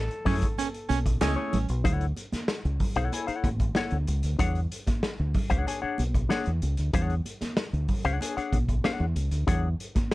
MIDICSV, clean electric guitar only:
0, 0, Header, 1, 2, 480
1, 0, Start_track
1, 0, Tempo, 635593
1, 1399, Time_signature, 4, 2, 24, 8
1, 7660, End_track
2, 0, Start_track
2, 0, Title_t, "Clean electric guitar"
2, 0, Program_c, 0, 27
2, 191, Note_on_c, 0, 57, 83
2, 197, Note_on_c, 0, 64, 81
2, 198, Note_on_c, 0, 73, 85
2, 200, Note_on_c, 0, 68, 79
2, 346, Note_off_c, 0, 57, 0
2, 349, Note_off_c, 0, 64, 0
2, 350, Note_off_c, 0, 73, 0
2, 351, Note_off_c, 0, 68, 0
2, 914, Note_on_c, 0, 57, 69
2, 916, Note_on_c, 0, 64, 69
2, 920, Note_on_c, 0, 75, 72
2, 922, Note_on_c, 0, 68, 68
2, 1025, Note_off_c, 0, 68, 0
2, 1025, Note_off_c, 0, 75, 0
2, 1028, Note_off_c, 0, 64, 0
2, 1029, Note_off_c, 0, 57, 0
2, 1029, Note_on_c, 0, 73, 94
2, 1034, Note_on_c, 0, 68, 73
2, 1037, Note_on_c, 0, 64, 67
2, 1039, Note_on_c, 0, 57, 72
2, 1185, Note_off_c, 0, 73, 0
2, 1187, Note_off_c, 0, 68, 0
2, 1189, Note_off_c, 0, 64, 0
2, 1190, Note_off_c, 0, 57, 0
2, 1390, Note_on_c, 0, 64, 88
2, 1395, Note_on_c, 0, 69, 74
2, 1395, Note_on_c, 0, 73, 83
2, 1399, Note_on_c, 0, 78, 85
2, 1546, Note_off_c, 0, 64, 0
2, 1548, Note_off_c, 0, 69, 0
2, 1548, Note_off_c, 0, 73, 0
2, 1550, Note_off_c, 0, 78, 0
2, 2236, Note_on_c, 0, 78, 80
2, 2238, Note_on_c, 0, 73, 69
2, 2242, Note_on_c, 0, 69, 67
2, 2244, Note_on_c, 0, 64, 69
2, 2353, Note_off_c, 0, 64, 0
2, 2356, Note_off_c, 0, 69, 0
2, 2358, Note_off_c, 0, 73, 0
2, 2362, Note_on_c, 0, 64, 58
2, 2365, Note_on_c, 0, 69, 52
2, 2367, Note_off_c, 0, 78, 0
2, 2367, Note_on_c, 0, 73, 54
2, 2370, Note_on_c, 0, 80, 56
2, 2465, Note_off_c, 0, 73, 0
2, 2468, Note_off_c, 0, 80, 0
2, 2469, Note_off_c, 0, 69, 0
2, 2470, Note_off_c, 0, 64, 0
2, 2471, Note_on_c, 0, 78, 86
2, 2474, Note_on_c, 0, 73, 84
2, 2478, Note_on_c, 0, 69, 66
2, 2479, Note_on_c, 0, 64, 79
2, 2626, Note_off_c, 0, 78, 0
2, 2627, Note_off_c, 0, 73, 0
2, 2630, Note_off_c, 0, 64, 0
2, 2630, Note_off_c, 0, 69, 0
2, 2838, Note_on_c, 0, 64, 79
2, 2843, Note_on_c, 0, 69, 78
2, 2847, Note_on_c, 0, 73, 91
2, 2848, Note_on_c, 0, 78, 82
2, 2990, Note_off_c, 0, 64, 0
2, 2992, Note_off_c, 0, 69, 0
2, 2994, Note_off_c, 0, 73, 0
2, 2995, Note_off_c, 0, 78, 0
2, 3312, Note_on_c, 0, 62, 86
2, 3319, Note_on_c, 0, 68, 81
2, 3319, Note_on_c, 0, 73, 100
2, 3322, Note_on_c, 0, 78, 102
2, 3467, Note_off_c, 0, 62, 0
2, 3470, Note_off_c, 0, 68, 0
2, 3470, Note_off_c, 0, 73, 0
2, 3472, Note_off_c, 0, 78, 0
2, 4151, Note_on_c, 0, 78, 86
2, 4156, Note_on_c, 0, 73, 80
2, 4157, Note_on_c, 0, 68, 66
2, 4160, Note_on_c, 0, 62, 62
2, 4271, Note_off_c, 0, 62, 0
2, 4274, Note_off_c, 0, 68, 0
2, 4278, Note_off_c, 0, 73, 0
2, 4280, Note_on_c, 0, 62, 60
2, 4283, Note_on_c, 0, 68, 61
2, 4286, Note_off_c, 0, 78, 0
2, 4287, Note_on_c, 0, 73, 74
2, 4289, Note_on_c, 0, 80, 66
2, 4385, Note_off_c, 0, 73, 0
2, 4389, Note_off_c, 0, 68, 0
2, 4390, Note_off_c, 0, 80, 0
2, 4391, Note_off_c, 0, 62, 0
2, 4393, Note_on_c, 0, 78, 79
2, 4394, Note_on_c, 0, 73, 82
2, 4398, Note_on_c, 0, 68, 73
2, 4400, Note_on_c, 0, 62, 70
2, 4547, Note_off_c, 0, 78, 0
2, 4548, Note_off_c, 0, 73, 0
2, 4550, Note_off_c, 0, 62, 0
2, 4550, Note_off_c, 0, 68, 0
2, 4751, Note_on_c, 0, 62, 89
2, 4756, Note_on_c, 0, 68, 83
2, 4758, Note_on_c, 0, 73, 92
2, 4760, Note_on_c, 0, 78, 83
2, 4906, Note_off_c, 0, 62, 0
2, 4908, Note_off_c, 0, 68, 0
2, 4910, Note_off_c, 0, 73, 0
2, 4911, Note_off_c, 0, 78, 0
2, 5237, Note_on_c, 0, 62, 87
2, 5239, Note_on_c, 0, 68, 87
2, 5243, Note_on_c, 0, 73, 102
2, 5243, Note_on_c, 0, 78, 92
2, 5389, Note_off_c, 0, 62, 0
2, 5390, Note_off_c, 0, 68, 0
2, 5392, Note_off_c, 0, 73, 0
2, 5392, Note_off_c, 0, 78, 0
2, 6076, Note_on_c, 0, 78, 78
2, 6080, Note_on_c, 0, 73, 79
2, 6081, Note_on_c, 0, 68, 70
2, 6084, Note_on_c, 0, 62, 73
2, 6188, Note_off_c, 0, 62, 0
2, 6192, Note_off_c, 0, 68, 0
2, 6197, Note_off_c, 0, 73, 0
2, 6197, Note_on_c, 0, 62, 61
2, 6201, Note_on_c, 0, 68, 62
2, 6204, Note_off_c, 0, 78, 0
2, 6206, Note_on_c, 0, 73, 64
2, 6207, Note_on_c, 0, 80, 61
2, 6312, Note_off_c, 0, 73, 0
2, 6316, Note_off_c, 0, 62, 0
2, 6316, Note_off_c, 0, 68, 0
2, 6317, Note_off_c, 0, 80, 0
2, 6320, Note_on_c, 0, 78, 83
2, 6321, Note_on_c, 0, 73, 85
2, 6325, Note_on_c, 0, 68, 78
2, 6329, Note_on_c, 0, 62, 76
2, 6470, Note_off_c, 0, 78, 0
2, 6471, Note_off_c, 0, 73, 0
2, 6473, Note_off_c, 0, 68, 0
2, 6474, Note_off_c, 0, 62, 0
2, 6676, Note_on_c, 0, 62, 83
2, 6679, Note_on_c, 0, 68, 90
2, 6685, Note_on_c, 0, 73, 77
2, 6687, Note_on_c, 0, 78, 88
2, 6828, Note_off_c, 0, 62, 0
2, 6829, Note_off_c, 0, 68, 0
2, 6832, Note_off_c, 0, 73, 0
2, 6834, Note_off_c, 0, 78, 0
2, 7151, Note_on_c, 0, 62, 67
2, 7154, Note_on_c, 0, 68, 79
2, 7155, Note_on_c, 0, 73, 82
2, 7160, Note_on_c, 0, 78, 89
2, 7305, Note_off_c, 0, 62, 0
2, 7307, Note_off_c, 0, 68, 0
2, 7307, Note_off_c, 0, 73, 0
2, 7310, Note_off_c, 0, 78, 0
2, 7660, End_track
0, 0, End_of_file